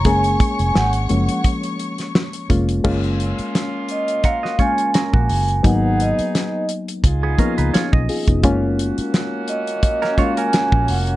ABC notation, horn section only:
X:1
M:4/4
L:1/8
Q:"Swing 16ths" 1/4=86
K:F#
V:1 name="Horn section"
z8 | [A,CE]6- [A,CE] z | [B,DG]3 z [DEG]3 z | [A,CF]8 |]